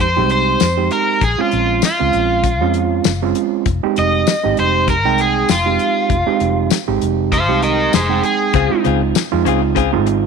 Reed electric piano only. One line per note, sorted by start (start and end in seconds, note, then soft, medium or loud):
0.17 0.66 G#3 medium
0.17 0.66 C4 medium
0.17 0.66 D#4 medium
0.17 0.66 G4 medium
0.78 1.22 G#3 medium
0.78 1.22 C4 medium
0.78 1.22 D#4 medium
0.78 1.22 G4 medium
1.38 1.88 G#3 medium
1.38 1.88 C4 medium
1.38 1.88 C#4 medium
1.38 1.88 F4 medium
2.00 2.49 G#3 medium
2.00 2.49 C4 medium
2.00 2.50 C#4 medium
2.00 2.50 F4 medium
2.61 3.11 G#3 medium
2.61 3.11 C4 medium
2.61 3.11 C#4 medium
2.61 3.11 F4 loud
3.22 3.66 G#3 medium
3.22 3.67 C4 medium
3.22 3.67 C#4 medium
3.22 3.67 F4 loud
3.83 4.33 G#3 medium
3.83 4.33 C4 medium
3.83 4.33 D#4 medium
3.83 4.33 G4 loud
4.44 4.93 G#3 medium
4.44 4.93 C4 medium
4.44 4.93 D#4 medium
4.44 4.94 G4 medium
5.05 5.55 G#3 medium
5.05 5.55 C4 medium
5.05 5.55 D#4 medium
5.05 5.55 G5 medium
5.66 6.15 G#3 medium
5.66 6.15 C4 medium
5.66 6.15 D#4 medium
5.66 6.15 G4 medium
6.27 6.76 G#3 medium
6.27 6.76 C4 medium
6.27 6.76 D#4 medium
6.27 6.76 G4 medium
6.88 7.37 G#3 medium
6.88 7.37 C4 medium
6.88 7.37 D#4 medium
6.88 7.37 G4 medium
7.49 7.98 G#3 medium
7.49 7.99 C4 medium
7.49 7.99 D#4 medium
7.49 7.98 G4 medium
8.09 8.54 G#3 medium
8.09 8.54 C4 medium
8.09 8.54 D#4 medium
8.09 8.54 G5 medium
8.70 9.20 G#3 medium
8.70 9.20 C4 medium
8.70 9.20 D#4 medium
8.70 9.20 F4 medium
9.32 9.81 G#3 loud
9.32 9.82 C4 medium
9.32 9.81 D#4 medium
9.32 9.82 F4 loud
9.93 10.26 G#3 loud
9.93 10.26 C4 loud
9.93 10.26 D#4 medium
9.93 10.26 F4 loud